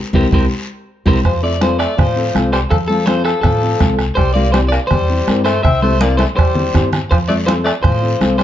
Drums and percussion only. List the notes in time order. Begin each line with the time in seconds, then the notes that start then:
0.13 bombo low, high conga, long guiro
0.31 bombo low, high conga, long guiro
1.06 bombo low, high conga, long guiro
1.24 bombo low, bombo rim, high conga, long guiro
1.61 bombo rim, high conga, short guiro
1.80 bombo rim, short guiro
1.98 bombo low, bombo rim, high conga, low conga, long guiro
2.35 bombo rim, high conga, short guiro
2.53 bombo rim, short guiro
2.71 bombo low, bombo rim, high conga, low conga, long guiro
2.89 high conga
3.07 bombo rim, high conga, short guiro
3.25 bombo rim, short guiro
3.43 bombo low, bombo rim, high conga, low conga, long guiro
3.80 bombo low, bombo rim, high conga, low conga, short guiro
3.99 bombo rim, short guiro
4.17 bombo low, bombo rim, high conga, long guiro
4.36 high conga
4.54 bombo rim, high conga, short guiro
4.72 bombo rim, short guiro
4.91 bombo low, bombo rim, high conga, low conga, long guiro
5.27 bombo rim, high conga, short guiro
5.46 bombo rim, short guiro
5.64 bombo low, bombo rim, high conga, low conga, long guiro
5.82 high conga
6.01 bombo rim, high conga, short guiro
6.19 bombo rim, high conga, short guiro
6.38 bombo low, bombo rim, long guiro
6.55 low conga
6.74 bombo low, bombo rim, low conga, short guiro
6.93 bombo rim, low conga, short guiro
7.11 bombo low, bombo rim, high conga, long guiro
7.30 high conga
7.48 bombo rim, high conga, short guiro
7.67 bombo rim, short guiro
7.84 bombo low, bombo rim, high conga, low conga, long guiro
8.21 bombo rim, high conga, short guiro
8.39 bombo rim, high conga, short guiro